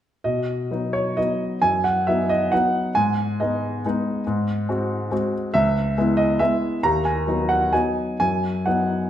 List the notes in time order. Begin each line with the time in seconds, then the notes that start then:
0.24 B2 D#5
0.71 F#3 B3 D#4
0.93 C#5
1.17 F#3 B3 D#4 D#5
1.62 F#2 G#5
1.84 F#5
2.07 F#3 B3 D#4 E5
2.29 D#5
2.52 F#3 B3 D#4 F#5
2.95 G#2 G#5
3.40 G#3 B3 D#4 D#5
3.86 G#3 B3 D#4
4.27 G#2
4.69 G#3 C4 F#4
5.12 G#3 C4 F#4
5.54 C#2 E5
5.98 G#3 B3 E4
6.17 D#5
6.39 G#3 B3 E4 E5
6.83 D#2 A#5
7.05 G#5
7.27 F#3 B3 D#4
7.49 F#5
7.73 F#3 B3 D#4 G#5
8.20 F#2 G#5
8.66 F#3 B3 D#4 F#5